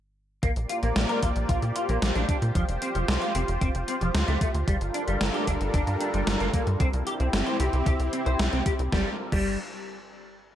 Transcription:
0.43 analog synth bass A#1, analog synth pad A#3 F4 G4 C5 D5, clean electric guitar A#3, kick, closed hi-hat
0.56 analog synth bass A#1, closed hi-hat
0.69 clean electric guitar F4, closed hi-hat
0.83 analog synth bass A#1, clean electric guitar A#3, closed hi-hat
0.96 analog synth bass A#1, snare, closed hi-hat
1.09 clean electric guitar A#4, closed hi-hat
1.23 analog synth bass A#1, clean electric guitar F4, kick, closed hi-hat
1.36 analog synth bass A#1, closed hi-hat
1.49 analog synth bass A#1, clean electric guitar F4, kick, closed hi-hat
1.62 analog synth bass A#2, closed hi-hat
1.76 clean electric guitar F4, closed hi-hat
1.89 analog synth bass A#1, clean electric guitar A#3, closed hi-hat
2.02 analog synth bass A#1, snare, closed hi-hat
2.15 analog synth bass A#1, clean electric guitar D4, closed hi-hat
2.29 clean electric guitar D4, kick, closed hi-hat
2.42 analog synth bass A#2, closed hi-hat
2.55 analog synth bass F1, clean electric guitar F3, kick, closed hi-hat
2.69 analog synth bass F1, closed hi-hat
2.82 clean electric guitar C4, closed hi-hat
2.95 analog synth bass F1, clean electric guitar F3, closed hi-hat
3.08 analog synth bass C2, snare, closed hi-hat
3.22 clean electric guitar F4, closed hi-hat
3.35 analog synth bass F1, clean electric guitar C4, closed hi-hat
3.48 analog synth bass F1, closed hi-hat
3.61 analog synth bass F1, clean electric guitar C4, kick, closed hi-hat
3.75 analog synth bass F1, closed hi-hat
3.88 clean electric guitar C4, closed hi-hat
4.01 analog synth bass F1, clean electric guitar F3, closed hi-hat
4.15 analog synth bass D2, snare, closed hi-hat
4.28 analog synth bass D2, clean electric guitar A3, closed hi-hat
4.41 clean electric guitar A3, kick, closed hi-hat
4.54 analog synth bass D2, closed hi-hat
4.68 analog synth bass G1, analog synth pad G3 D4 A4 A#4, clean electric guitar G3, kick, closed hi-hat
4.81 analog synth bass G1, closed hi-hat
4.94 clean electric guitar D4, closed hi-hat
5.08 analog synth bass G1, clean electric guitar G3, closed hi-hat
5.21 analog synth bass G1, snare, closed hi-hat
5.34 clean electric guitar G4, closed hi-hat
5.47 analog synth bass G1, clean electric guitar D4, kick, closed hi-hat
5.61 analog synth bass G1, closed hi-hat
5.74 analog synth bass G1, clean electric guitar D4, kick, closed hi-hat
5.87 analog synth bass G2, closed hi-hat
6.01 clean electric guitar D4, closed hi-hat
6.14 analog synth bass G1, clean electric guitar G3, closed hi-hat
6.27 analog synth bass G1, snare, closed hi-hat
6.40 analog synth bass G1, clean electric guitar A#3, closed hi-hat
6.54 clean electric guitar A#3, kick, closed hi-hat
6.67 analog synth bass G2, closed hi-hat
6.80 analog synth bass C2, clean electric guitar C4, analog synth pad C4 E4 G4, kick, closed hi-hat
6.93 analog synth bass C2, closed hi-hat
7.07 clean electric guitar G4, closed hi-hat
7.20 analog synth bass C2, clean electric guitar C4, closed hi-hat
7.33 analog synth bass G1, snare, closed hi-hat
7.46 clean electric guitar C5, closed hi-hat
7.60 analog synth bass C2, clean electric guitar G4, closed hi-hat
7.73 analog synth bass C2, closed hi-hat
7.86 analog synth bass C2, clean electric guitar G4, kick, closed hi-hat
8.00 analog synth bass C2, closed hi-hat
8.13 clean electric guitar C4, closed hi-hat
8.26 analog synth bass C2, clean electric guitar C5, closed hi-hat
8.39 analog synth bass C2, snare, closed hi-hat
8.53 analog synth bass C2, clean electric guitar C4, closed hi-hat
8.66 clean electric guitar G4, kick, closed hi-hat
8.79 analog synth bass C2, closed hi-hat
8.92 analog synth bass G1, analog synth pad G3 D4 F4 A4 A#4, clean electric guitar G3, kick, snare
9.32 analog synth bass G1, clean electric guitar G3, kick, crash

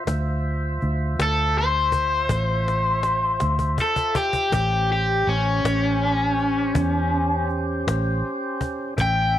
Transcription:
0.07 fingered electric bass D2, tonewheel organ F4 C5 E5, cajon bass
0.81 fingered electric bass D2, cajon slap
1.19 fingered electric bass D2, overdriven electric guitar A4, cajon slap
1.59 overdriven electric guitar C5
1.92 cajon bass
2.29 fingered electric bass A1, cajon bass, cajon slap
2.68 cajon slap
3.03 cajon slap
3.40 fingered electric bass D2, cajon slap
3.59 cajon bass
3.78 overdriven electric guitar A4, cajon bass
3.96 cajon bass
4.15 overdriven electric guitar G4, cajon bass
4.33 cajon bass
4.52 fingered electric bass A1, tonewheel organ C#4 G4 C5, overdriven electric guitar G4, cajon bass
4.93 overdriven electric guitar G4
5.27 fingered electric bass A1, overdriven electric guitar C#4, cajon slap
5.64 fingered electric bass A1, cajon slap
6.38 cajon slap
6.75 fingered electric bass E2, cajon bass
7.49 cajon slap
7.87 fingered electric bass A1, cajon slap
8.61 cajon bass
8.96 fingered electric bass A1, tonewheel organ C#4 E5 G5, cajon bass
9.01 overdriven electric guitar G5

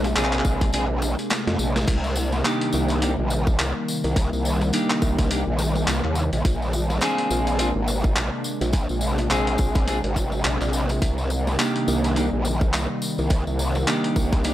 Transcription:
Already playing: wobble bass A#1, ambient pad C3 G#3 A#3 D4
0.04 snare, closed hi-hat, tambourine
0.16 wobble bass A#1, clean electric guitar C4 D4 F4 G#4, clap, closed hi-hat, tambourine
0.24 clap
0.33 clap, closed hi-hat
0.39 clap
0.45 wobble bass A#1, kick, tambourine
0.61 kick, closed hi-hat, tambourine
0.73 wobble bass A#1, clean electric guitar C4 D4 F4 G#4, closed hi-hat, tambourine
1.02 snare, tambourine
1.19 closed hi-hat, tambourine
1.30 snare, clap, closed hi-hat, tambourine
1.47 wobble bass F2, snare, closed hi-hat
1.59 wobble bass A#1, tambourine
1.76 snare, closed hi-hat, tambourine
1.87 wobble bass C2, ambient pad D#3 G3 A#3, kick, closed hi-hat, crash, tambourine
2.04 tambourine
2.16 tambourine
2.32 snare, tambourine
2.44 clean electric guitar A#3 D4 D#4 G4, clap, closed hi-hat, tambourine
2.61 closed hi-hat
2.73 wobble bass C2, tambourine
2.88 closed hi-hat, tambourine
3.02 clean electric guitar A#3 D4 D#4 G4, closed hi-hat, tambourine
3.19 wobble bass A#1
3.30 tambourine
3.47 kick, tambourine
3.59 wobble bass C2, clap, closed hi-hat, tambourine
3.88 tambourine
4.04 wobble bass C2, closed hi-hat, tambourine
4.16 kick, closed hi-hat, tambourine
4.33 wobble bass C2, tambourine
4.45 tambourine
4.61 snare, tambourine
4.73 clean electric guitar A#3 D4 D#4 G4, closed hi-hat, tambourine
4.90 clap, closed hi-hat
5.02 wobble bass C2, kick, tambourine
5.19 kick, closed hi-hat, tambourine
5.30 clean electric guitar A#3 D4 D#4 G4, closed hi-hat, tambourine
5.47 wobble bass A#1
5.59 snare, tambourine
5.75 tambourine
5.88 wobble bass C2, clap, closed hi-hat, tambourine
6.04 wobble bass D#2, clap
6.15 tambourine
6.33 wobble bass A#1, closed hi-hat, tambourine
6.45 wobble bass A#1, ambient pad C3 G#3 A#3 D4, kick, closed hi-hat, tambourine
6.62 tambourine
6.73 tambourine
6.90 snare, tambourine
7.01 clean electric guitar C4 D4 F4 G#4, clap, closed hi-hat, tambourine
7.18 closed hi-hat
7.31 wobble bass A#1, tambourine
7.47 closed hi-hat, tambourine
7.58 clean electric guitar C4 D4 F4 G#4, closed hi-hat, tambourine
7.75 wobble bass G#1
7.88 tambourine
8.04 kick, tambourine
8.16 wobble bass A#1, clap, closed hi-hat, tambourine
8.44 tambourine
8.61 wobble bass A#1, closed hi-hat, tambourine
8.73 ambient pad C4, kick, closed hi-hat, tambourine
8.89 wobble bass A#1, tambourine
9.01 tambourine
9.18 snare, closed hi-hat, tambourine
9.30 wobble bass A#1, clean electric guitar C4 D4 F4 G#4, clap, closed hi-hat, tambourine
9.47 closed hi-hat
9.58 wobble bass A#1, kick, tambourine
9.75 kick, closed hi-hat, tambourine
9.87 clean electric guitar C4 D4 F4 G#4, closed hi-hat, tambourine
10.04 wobble bass G#1, closed hi-hat
10.16 kick, snare, tambourine
10.32 tambourine
10.44 wobble bass A#1, clap, closed hi-hat, tambourine
10.61 wobble bass A#1, clap, tambourine
10.70 clap, tambourine
10.79 clap
10.89 closed hi-hat, tambourine
11.02 wobble bass C2, ambient pad D#3 G3 A#3, kick, closed hi-hat, tambourine
11.18 tambourine
11.30 tambourine
11.47 snare, tambourine
11.59 clean electric guitar A#3 D4 D#4 G4, clap, closed hi-hat, tambourine
11.76 closed hi-hat
11.88 wobble bass C2, tambourine
12.04 closed hi-hat, tambourine
12.16 clean electric guitar A#3 D4 D#4 G4, closed hi-hat, tambourine
12.33 wobble bass A#1
12.45 tambourine
12.61 kick, tambourine
12.73 wobble bass C2, clap, closed hi-hat, tambourine
13.02 tambourine
13.18 wobble bass C2, tambourine
13.30 ambient pad C4, kick, closed hi-hat, tambourine
13.47 wobble bass C2, tambourine
13.59 tambourine
13.75 snare, tambourine
13.87 clean electric guitar A#3 D4 D#4 G4, clap, closed hi-hat, tambourine
14.04 closed hi-hat
14.16 wobble bass C2, kick, tambourine
14.33 kick, closed hi-hat, tambourine
14.44 clean electric guitar A#3 D4 D#4 G4, closed hi-hat, tambourine

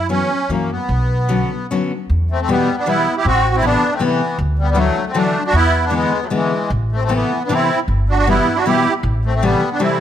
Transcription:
Already playing: upright bass F#2
0.09 steel-string acoustic guitar E3 F#3 B3 C#4, accordion C#4
0.49 upright bass F#2, steel-string acoustic guitar E3 F#3 A#3 C#4, accordion A#3
0.72 accordion B3
0.89 upright bass B1
1.29 steel-string acoustic guitar D3 F#3 B3 C#4
1.71 steel-string acoustic guitar D3 F#3 B3 C#4
2.10 upright bass E2
2.31 accordion A3 C4
2.40 accordion A3 C4
2.48 steel-string acoustic guitar B2 E3 G3 B3, accordion G3 B3
2.77 accordion B3 D4
2.86 steel-string acoustic guitar B2 E3 G3 B3, accordion B3 E4
3.17 accordion E4 G4
3.25 upright bass A1, accordion C4 F#4
3.55 accordion C4 E4
3.62 steel-string acoustic guitar C3 E3 A3 B3, accordion B3 D4
3.92 accordion A3 C4
3.99 steel-string acoustic guitar C3 E3 A3 B3, accordion E3
4.04 accordion B3
4.38 upright bass D2
4.59 accordion G3 B3
4.69 accordion G3 B3
4.75 steel-string acoustic guitar D3 E3 F#3 A3, accordion F#3 A3
5.07 accordion A3 C4
5.13 steel-string acoustic guitar D3 E3 F#3 A3, accordion A3 D4
5.45 accordion D4 F#4
5.53 upright bass E2, accordion B3 E4
5.82 accordion B3
5.86 accordion D4
5.90 steel-string acoustic guitar D3 E3 G#3 B3, accordion G#3
5.96 accordion B3
6.23 accordion F#3 A3
6.30 steel-string acoustic guitar D3 E3 G#3 B3, accordion E3
6.35 accordion G#3
6.70 upright bass A1
6.92 accordion A3 C4
7.02 accordion A3 C4
7.09 steel-string acoustic guitar C3 E3 A3 B3, accordion E3
7.15 accordion B3
7.44 accordion B3 D4
7.49 steel-string acoustic guitar C3 E3 A3 B3, accordion C4
7.55 accordion E4
7.88 upright bass G1
8.09 accordion D4 F#4
8.17 accordion D4 F#4
8.27 steel-string acoustic guitar B2 E3 G3 B3, accordion B3 E4
8.55 accordion D4 F#4
8.65 steel-string acoustic guitar B2 E3 G3 B3, accordion E4 G4
9.03 upright bass A1
9.25 accordion A3 C4
9.34 accordion A3 C4
9.42 steel-string acoustic guitar C3 E3 G3 A3, accordion G3 B3
9.71 accordion B3 D4
9.79 steel-string acoustic guitar C3 E3 G3 A3, accordion C4 E4

